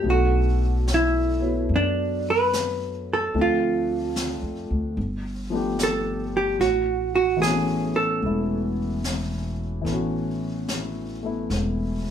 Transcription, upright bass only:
0, 0, Header, 1, 2, 480
1, 0, Start_track
1, 0, Key_signature, 3, "major"
1, 0, Tempo, 819672
1, 23, Time_signature, 4, 2, 24, 8
1, 7089, End_track
2, 0, Start_track
2, 0, Title_t, "Upright bass"
2, 0, Program_c, 0, 32
2, 23, Note_on_c, 0, 35, 58
2, 967, Note_off_c, 0, 35, 0
2, 990, Note_on_c, 0, 42, 58
2, 1932, Note_off_c, 0, 42, 0
2, 1956, Note_on_c, 0, 38, 56
2, 2567, Note_off_c, 0, 38, 0
2, 2592, Note_on_c, 0, 41, 45
2, 2738, Note_off_c, 0, 41, 0
2, 2755, Note_on_c, 0, 38, 52
2, 2900, Note_off_c, 0, 38, 0
2, 2910, Note_on_c, 0, 31, 64
2, 3840, Note_off_c, 0, 31, 0
2, 3862, Note_on_c, 0, 33, 60
2, 4789, Note_off_c, 0, 33, 0
2, 4816, Note_on_c, 0, 28, 63
2, 5744, Note_off_c, 0, 28, 0
2, 5766, Note_on_c, 0, 33, 60
2, 6708, Note_off_c, 0, 33, 0
2, 6733, Note_on_c, 0, 28, 61
2, 7089, Note_off_c, 0, 28, 0
2, 7089, End_track
0, 0, End_of_file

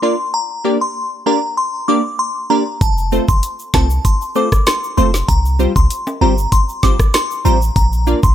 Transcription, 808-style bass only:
0, 0, Header, 1, 2, 480
1, 0, Start_track
1, 0, Tempo, 618557
1, 262, Time_signature, 4, 2, 24, 8
1, 6479, End_track
2, 0, Start_track
2, 0, Title_t, "808-style bass"
2, 0, Program_c, 0, 38
2, 2182, Note_on_c, 0, 29, 108
2, 2481, Note_off_c, 0, 29, 0
2, 2550, Note_on_c, 0, 29, 99
2, 2642, Note_off_c, 0, 29, 0
2, 2901, Note_on_c, 0, 36, 99
2, 3097, Note_off_c, 0, 36, 0
2, 3863, Note_on_c, 0, 29, 96
2, 4058, Note_off_c, 0, 29, 0
2, 4102, Note_on_c, 0, 36, 105
2, 4401, Note_off_c, 0, 36, 0
2, 4469, Note_on_c, 0, 36, 107
2, 4561, Note_off_c, 0, 36, 0
2, 4822, Note_on_c, 0, 31, 89
2, 5017, Note_off_c, 0, 31, 0
2, 5782, Note_on_c, 0, 33, 92
2, 5978, Note_off_c, 0, 33, 0
2, 6021, Note_on_c, 0, 34, 114
2, 6321, Note_off_c, 0, 34, 0
2, 6389, Note_on_c, 0, 34, 98
2, 6479, Note_off_c, 0, 34, 0
2, 6479, End_track
0, 0, End_of_file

